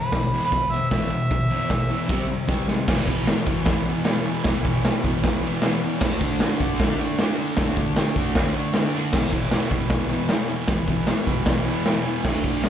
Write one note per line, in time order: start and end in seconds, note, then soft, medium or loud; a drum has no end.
0.00 0.11 E2 medium
0.00 0.11 B2 medium
0.00 0.41 B4 medium
0.12 0.31 E2 medium
0.12 0.31 B2 medium
0.12 kick loud
0.12 snare loud
0.12 crash medium
0.33 0.52 E2 medium
0.33 0.52 B2 medium
0.33 0.52 E3 medium
0.44 0.74 B4 loud
0.52 0.70 E2 medium
0.52 0.70 B2 medium
0.52 kick loud
0.52 crash medium
0.72 0.90 E2 medium
0.72 0.91 B2 medium
0.72 0.90 E5 loud
0.91 1.10 E2 medium
0.91 1.10 B2 medium
0.91 1.11 E3 medium
0.91 2.45 E5 medium
0.91 kick loud
0.91 snare loud
0.91 crash medium
1.12 1.29 E2 medium
1.12 1.29 B2 medium
1.31 1.49 E2 medium
1.31 1.49 B2 medium
1.31 kick loud
1.31 crash medium
1.50 1.69 E2 medium
1.50 1.69 B2 loud
1.50 1.69 E3 loud
1.70 1.88 E2 medium
1.70 1.89 B2 medium
1.70 kick loud
1.70 snare loud
1.70 crash medium
1.90 2.08 E2 medium
1.90 2.08 B2 medium
1.90 2.09 E3 medium
2.09 2.28 C3 medium
2.09 2.28 G3 loud
2.09 2.29 C4 loud
2.09 kick loud
2.09 crash medium
2.29 2.47 C3 medium
2.29 2.47 G3 medium
2.48 2.67 C3 medium
2.48 2.67 G3 loud
2.48 2.68 C4 medium
2.48 kick loud
2.48 snare medium
2.68 2.86 C3 medium
2.68 2.86 G3 medium
2.68 snare medium
2.88 3.26 E2 medium
2.88 3.10 B2 loud
2.88 3.07 E3 loud
2.88 kick loud
2.88 snare loud
2.88 crash loud
3.07 3.27 B2 medium
3.07 3.29 E3 medium
3.07 kick medium
3.26 3.49 E2 medium
3.26 3.47 B2 medium
3.26 3.45 E3 medium
3.26 snare loud
3.26 open hi-hat medium
3.46 3.65 E2 medium
3.46 3.66 B2 medium
3.46 3.68 E3 medium
3.46 kick medium
3.66 4.03 E2 medium
3.66 3.87 B2 medium
3.66 3.84 E3 medium
3.66 kick loud
3.66 snare loud
3.66 open hi-hat medium
3.85 4.05 B2 medium
3.85 4.07 E3 medium
4.05 4.44 E2 medium
4.05 4.27 B2 medium
4.05 4.24 E3 medium
4.05 snare loud
4.05 open hi-hat medium
4.25 4.46 B2 medium
4.25 4.47 E3 medium
4.44 4.83 E2 loud
4.44 4.67 B2 loud
4.44 4.63 E3 loud
4.44 kick loud
4.44 snare loud
4.44 open hi-hat medium
4.64 4.85 B2 medium
4.64 4.86 E3 medium
4.64 kick medium
4.84 5.07 E2 medium
4.84 5.05 B2 medium
4.84 5.03 E3 medium
4.84 snare loud
4.84 open hi-hat medium
5.04 5.23 E2 medium
5.04 5.25 B2 medium
5.04 5.26 E3 medium
5.04 kick medium
5.24 5.61 E2 medium
5.24 5.45 B2 medium
5.24 5.42 E3 medium
5.24 kick loud
5.24 snare loud
5.24 open hi-hat medium
5.43 5.63 B2 medium
5.43 5.64 E3 medium
5.62 6.00 E2 loud
5.62 5.84 B2 loud
5.62 5.81 E3 loud
5.62 snare loud
5.62 open hi-hat medium
5.82 6.02 B2 medium
5.82 6.00 E3 medium
6.01 6.40 D3 loud
6.01 6.23 A3 loud
6.01 6.20 D4 loud
6.01 kick loud
6.01 snare loud
6.01 crash loud
6.20 6.42 A3 medium
6.20 6.44 D4 medium
6.20 kick medium
6.40 6.63 D3 medium
6.40 6.62 A3 medium
6.40 6.60 D4 medium
6.40 snare loud
6.40 open hi-hat medium
6.60 6.79 D3 medium
6.60 6.81 A3 medium
6.60 6.83 D4 medium
6.60 kick medium
6.80 7.18 D3 medium
6.80 7.02 A3 medium
6.80 kick loud
6.80 snare loud
6.80 open hi-hat medium
6.84 6.98 D4 medium
6.99 7.20 A3 medium
6.99 7.21 D4 medium
7.19 7.57 D3 loud
7.19 7.41 A3 medium
7.19 7.37 D4 loud
7.19 snare loud
7.19 open hi-hat medium
7.38 7.59 A3 medium
7.38 7.61 D4 medium
7.57 7.97 D3 loud
7.57 7.80 A3 loud
7.57 kick loud
7.57 snare loud
7.57 open hi-hat medium
7.62 7.77 D4 loud
7.77 7.99 D4 medium
7.77 kick medium
7.82 7.98 A3 medium
7.96 8.19 D3 medium
7.96 8.17 A3 medium
7.96 8.16 D4 loud
7.96 snare loud
7.96 open hi-hat medium
8.16 8.36 A3 medium
8.16 8.38 D4 medium
8.16 kick medium
8.20 8.35 D3 medium
8.35 8.72 D3 medium
8.35 8.57 A3 medium
8.35 8.54 D4 medium
8.35 kick loud
8.35 snare loud
8.35 open hi-hat medium
8.56 8.74 A3 medium
8.56 8.75 D4 medium
8.74 9.12 D3 loud
8.74 8.95 A3 loud
8.74 8.92 D4 loud
8.74 snare loud
8.74 open hi-hat medium
8.93 9.14 A3 medium
8.93 9.12 D4 medium
9.13 9.52 E2 loud
9.13 9.35 B2 loud
9.13 9.33 E3 loud
9.13 kick loud
9.13 snare loud
9.13 crash loud
9.33 9.53 B2 medium
9.33 9.56 E3 medium
9.33 kick medium
9.51 9.75 E2 medium
9.51 9.72 B2 medium
9.51 snare loud
9.51 open hi-hat medium
9.56 9.72 E3 medium
9.71 9.92 B2 medium
9.71 9.93 E3 medium
9.71 kick medium
9.75 9.90 E2 medium
9.90 10.28 E2 medium
9.90 10.12 B2 medium
9.90 kick loud
9.90 snare loud
9.90 open hi-hat medium
9.94 10.09 E3 medium
10.10 10.29 B2 medium
10.10 10.31 E3 medium
10.29 10.67 E2 loud
10.29 10.51 B2 loud
10.29 10.48 E3 loud
10.29 snare loud
10.29 open hi-hat medium
10.49 10.69 B2 medium
10.49 10.70 E3 medium
10.68 11.06 E2 loud
10.68 10.90 B2 loud
10.68 10.86 E3 loud
10.68 kick loud
10.68 snare loud
10.68 open hi-hat medium
10.88 11.07 B2 medium
10.88 11.09 E3 medium
10.88 kick medium
11.07 11.28 E2 medium
11.07 11.27 B2 medium
11.07 11.25 E3 loud
11.07 snare loud
11.07 open hi-hat medium
11.26 11.44 E2 medium
11.26 11.46 B2 medium
11.26 11.48 E3 medium
11.26 kick medium
11.45 11.84 E2 medium
11.45 11.68 B2 medium
11.45 11.65 E3 medium
11.45 kick loud
11.45 snare loud
11.45 open hi-hat medium
11.66 11.86 B2 medium
11.66 11.87 E3 medium
11.85 12.23 E2 loud
11.85 12.06 B2 loud
11.85 12.03 E3 loud
11.85 snare loud
11.85 open hi-hat medium
12.04 12.23 B2 medium
12.04 12.23 E3 medium
12.24 12.62 D3 loud
12.24 12.45 A3 loud
12.24 12.43 D4 loud
12.24 kick loud
12.24 snare loud
12.24 crash loud
12.44 12.64 A3 medium
12.44 12.66 D4 medium
12.44 kick medium
12.63 12.69 D3 medium
12.63 12.69 A3 medium
12.63 snare loud
12.63 open hi-hat medium